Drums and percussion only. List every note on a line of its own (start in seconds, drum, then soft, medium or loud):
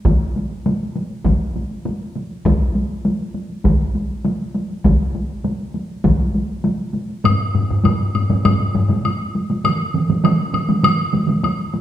0.05 taiko medium
0.05 taiko high medium
0.21 taiko high soft
0.36 taiko high soft
0.51 taiko high soft
0.66 taiko high medium
0.81 taiko high soft
0.96 taiko high soft
1.11 taiko high soft
1.25 taiko medium
1.25 taiko high medium
1.56 taiko high soft
1.71 taiko high soft
1.86 taiko high medium
2.01 taiko high soft
2.16 taiko high soft
2.31 taiko high soft
2.45 taiko medium
2.45 taiko high medium
2.60 taiko high soft
2.75 taiko high soft
2.90 taiko high soft
3.05 taiko high soft
3.20 taiko high soft
3.35 taiko high soft
3.50 taiko high soft
3.64 taiko medium
3.64 taiko high medium
3.95 taiko high soft
4.10 taiko high soft
4.25 taiko high medium
4.40 taiko high soft
4.54 taiko high soft
4.70 taiko high soft
4.84 taiko medium
4.84 taiko high medium
5.00 taiko high soft
5.15 taiko high soft
5.30 taiko high soft
5.45 taiko high medium
5.60 taiko high soft
5.74 taiko high soft
5.90 taiko high soft
6.04 taiko medium
6.04 taiko high medium
6.20 taiko high soft
6.35 taiko high soft
6.49 taiko high soft
6.64 taiko high medium
6.79 taiko high soft
6.94 taiko high soft
7.09 taiko high soft
7.24 taiko low-mid medium
7.24 taiko high medium
7.24 high woodblock soft
7.55 taiko low-mid medium
7.55 taiko high soft
7.71 taiko low-mid medium
7.84 taiko low-mid medium
7.84 taiko high medium
7.84 high woodblock soft
8.15 taiko low-mid medium
8.15 taiko high soft
8.15 high woodblock soft
8.30 taiko low-mid medium
8.30 taiko high soft
8.45 taiko low-mid medium
8.45 taiko high medium
8.45 high woodblock soft
8.75 taiko low-mid medium
8.75 taiko high soft
8.89 taiko low-mid medium
8.89 taiko high soft
9.05 taiko high medium
9.05 high woodblock soft
9.35 taiko high soft
9.50 taiko high medium
9.64 taiko mid medium
9.64 taiko high medium
9.64 high woodblock soft
9.94 taiko mid medium
9.94 taiko high soft
10.09 taiko mid medium
10.09 taiko high soft
10.24 taiko mid medium
10.24 taiko high medium
10.24 high woodblock soft
10.53 taiko mid medium
10.53 taiko high medium
10.53 high woodblock soft
10.68 taiko mid medium
10.68 taiko high medium
10.83 taiko mid medium
10.83 taiko high medium
10.83 high woodblock medium
11.13 taiko mid medium
11.13 taiko high soft
11.28 taiko mid medium
11.28 taiko high medium
11.43 taiko high medium
11.43 high woodblock soft
11.74 taiko high medium